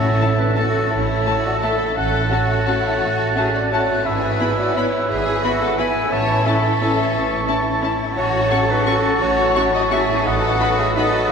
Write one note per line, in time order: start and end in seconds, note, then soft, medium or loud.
0.00 0.14 A1 medium
0.00 1.77 A2 soft
0.00 0.53 A3 medium
0.00 1.82 A3 soft
0.00 1.86 C#4 soft
0.00 0.38 E4 medium
0.00 1.95 E4 soft
0.00 0.18 F#4 medium
0.00 0.40 C#5 medium
0.00 0.53 A5 medium
0.00 0.53 E6 medium
0.20 0.34 A3 medium
0.20 0.28 A3 soft
0.20 0.57 E4 medium
0.20 0.34 E4 soft
0.20 0.29 A4 medium
0.20 0.29 A5 soft
0.39 0.57 D4 medium
0.39 0.56 B4 medium
0.56 0.69 A3 soft
0.56 0.90 A3 medium
0.56 0.65 A3 medium
0.56 0.91 C#4 medium
0.56 0.68 E4 medium
0.56 0.91 F#4 medium
0.56 0.93 A4 medium
0.56 0.65 A4 soft
0.56 0.64 A5 medium
0.56 0.90 A5 medium
0.56 0.90 E6 medium
0.91 1.20 A1 medium
0.91 1.61 A3 medium
0.91 1.43 E4 medium
0.91 1.26 E4 medium
0.91 1.44 C#5 medium
0.91 1.61 A5 medium
0.91 1.61 E6 medium
1.25 1.38 A3 medium
1.25 1.34 A3 soft
1.25 1.38 E4 medium
1.25 1.62 F#4 medium
1.25 1.34 A4 medium
1.25 1.35 A5 medium
1.45 1.63 F#4 medium
1.45 1.53 D5 medium
1.62 1.75 A3 soft
1.62 1.71 A3 soft
1.62 1.96 A3 medium
1.62 1.74 E4 soft
1.62 1.96 E4 medium
1.62 1.71 A4 medium
1.62 1.96 A4 medium
1.62 1.98 E5 medium
1.62 1.71 A5 medium
1.62 1.96 A5 medium
1.62 1.95 E6 medium
1.78 3.98 A2 soft
1.83 4.00 A3 soft
1.88 4.03 C#4 soft
1.92 4.05 F#4 soft
1.92 2.30 F#6 medium
1.97 2.25 A1 medium
1.97 2.29 A3 medium
1.97 2.31 C#4 medium
1.97 2.30 A4 medium
1.97 2.30 F#5 medium
1.97 2.30 A5 medium
2.30 3.69 A3 medium
2.30 2.44 A3 medium
2.30 2.40 C#4 medium
2.30 2.67 F#4 medium
2.30 2.44 F#4 medium
2.30 3.36 F#4 medium
2.30 2.40 F#4 medium
2.30 3.38 C#5 medium
2.30 2.39 A5 soft
2.30 3.70 A5 medium
2.30 3.69 F#6 medium
2.67 2.80 A3 soft
2.67 2.76 C#4 medium
2.67 3.01 E4 medium
2.67 2.75 F#4 medium
2.67 2.80 F#4 medium
2.67 2.75 A5 medium
3.01 3.30 A1 medium
3.01 3.36 F#4 medium
3.35 3.49 A3 medium
3.35 4.04 C#4 medium
3.35 3.44 C#4 medium
3.35 3.44 F#4 medium
3.35 3.49 F#4 medium
3.35 3.54 G#4 medium
3.35 3.54 E5 medium
3.35 3.45 A5 soft
3.53 3.61 F#4 medium
3.53 3.74 D5 medium
3.71 4.06 A3 medium
3.71 3.84 A3 soft
3.71 3.80 C#4 medium
3.71 3.84 F#4 medium
3.71 3.80 F#4 medium
3.71 4.06 F#4 medium
3.71 4.05 C#5 medium
3.71 4.04 A5 medium
3.71 3.80 A5 medium
3.71 4.08 F#6 medium
3.87 6.04 G#2 soft
3.92 6.07 B3 soft
3.96 6.07 E4 soft
4.05 4.34 G#1 medium
4.05 5.08 E3 medium
4.05 5.10 E4 medium
4.05 4.59 G#4 medium
4.05 5.07 B4 medium
4.05 4.60 E5 medium
4.05 5.10 E6 medium
4.39 4.47 B3 soft
4.39 4.53 B3 medium
4.39 4.53 E4 medium
4.39 4.48 E4 medium
4.39 4.49 B5 medium
4.58 4.76 F#4 medium
4.58 4.75 D5 medium
4.76 4.89 B3 medium
4.76 4.85 B3 medium
4.76 4.84 E4 medium
4.76 4.89 E4 medium
4.76 5.10 E4 medium
4.76 5.12 C#5 medium
4.76 4.85 B5 medium
5.08 5.38 G#1 medium
5.08 5.77 E3 medium
5.08 5.43 G#4 medium
5.08 5.60 G#4 medium
5.08 5.78 B4 medium
5.08 5.64 E5 medium
5.08 5.78 E6 medium
5.43 5.56 B3 medium
5.43 5.52 B3 medium
5.43 5.56 E4 medium
5.43 5.51 E4 medium
5.43 5.78 F#4 medium
5.43 5.52 B5 medium
5.61 5.78 A4 medium
5.61 5.81 F#5 medium
5.78 6.12 E3 medium
5.78 5.87 B3 medium
5.78 5.91 B3 medium
5.78 5.86 E4 medium
5.78 5.91 E4 medium
5.78 6.79 E4 medium
5.78 6.13 B4 medium
5.78 6.12 B4 medium
5.78 6.14 G#5 medium
5.78 5.87 B5 medium
5.78 6.14 E6 medium
5.94 7.97 A2 medium
5.99 8.02 A3 soft
6.04 8.07 C#4 soft
6.08 8.16 E4 soft
6.08 6.45 A5 medium
6.12 6.40 A1 medium
6.12 6.45 E3 medium
6.12 6.45 C#5 medium
6.12 6.48 A5 loud
6.12 6.46 C#6 medium
6.45 7.99 E3 medium
6.45 6.58 C#4 medium
6.45 6.54 C#4 medium
6.45 6.59 E4 medium
6.45 6.54 E4 medium
6.45 7.83 A4 medium
6.45 7.84 E5 medium
6.45 8.00 A5 medium
6.45 6.56 A5 medium
6.45 7.87 C#6 medium
6.81 6.89 C#4 medium
6.81 6.93 C#4 medium
6.81 7.47 C#4 medium
6.81 6.89 E4 medium
6.81 6.94 E4 medium
6.81 6.91 A5 medium
7.14 7.42 A1 medium
7.47 7.56 C#4 medium
7.47 7.60 C#4 medium
7.47 7.60 E4 medium
7.47 7.55 E4 medium
7.47 8.16 E4 medium
7.47 7.57 A5 medium
7.82 7.90 C#4 medium
7.82 7.95 C#4 medium
7.82 7.90 E4 medium
7.82 7.95 E4 medium
7.82 7.92 A5 medium
7.99 10.07 A2 medium
8.03 11.32 A3 soft
8.08 10.22 C#4 soft
8.12 10.21 F#3 medium
8.12 10.20 F#4 soft
8.12 8.65 F#4 medium
8.16 8.45 A1 medium
8.16 8.51 F#4 medium
8.16 8.72 C#5 loud
8.16 10.28 A5 medium
8.16 10.21 C#6 medium
8.51 8.59 C#4 medium
8.51 8.64 C#4 medium
8.51 8.60 F#4 medium
8.51 8.65 F#4 medium
8.51 8.87 A4 medium
8.51 8.59 C#6 medium
8.69 8.87 D#4 medium
8.69 8.90 B4 medium
8.85 9.19 C#4 medium
8.85 8.98 C#4 medium
8.85 8.95 C#4 medium
8.85 8.98 F#4 medium
8.85 8.95 F#4 medium
8.85 9.19 F#4 medium
8.85 9.21 A4 medium
8.85 8.95 C#6 medium
9.19 9.49 A1 medium
9.19 9.72 F#4 medium
9.19 9.54 F#4 medium
9.19 9.73 C#5 loud
9.54 9.68 C#4 medium
9.54 9.63 C#4 medium
9.54 10.24 E4 medium
9.54 9.68 F#4 medium
9.54 9.63 F#4 medium
9.54 9.64 C#6 medium
9.74 9.91 F#4 medium
9.74 9.83 D#5 medium
9.91 10.00 C#4 medium
9.91 10.04 C#4 medium
9.91 10.00 F#4 medium
9.91 10.04 F#4 medium
9.91 10.25 G#4 medium
9.91 10.29 E5 loud
9.91 9.99 C#6 medium
10.08 11.32 A2 medium
10.13 11.32 B3 soft
10.17 11.32 D#4 soft
10.22 10.60 D#4 medium
10.22 11.32 F#4 soft
10.22 10.78 A4 medium
10.22 11.32 D#6 medium
10.26 10.54 A1 medium
10.26 11.32 F#3 medium
10.26 11.32 B4 medium
10.26 10.81 F#5 loud
10.60 10.74 B3 medium
10.60 10.68 D#4 medium
10.60 10.74 D#4 medium
10.60 10.96 F#4 medium
10.60 10.68 F#4 medium
10.60 10.69 B5 medium
10.78 10.96 G#4 medium
10.78 10.96 E5 medium
10.96 11.09 B3 medium
10.96 11.04 D#4 medium
10.96 11.09 D#4 medium
10.96 11.30 F#4 medium
10.96 11.05 F#4 medium
10.96 11.30 A4 medium
10.96 11.32 D#5 medium
10.96 11.06 B5 medium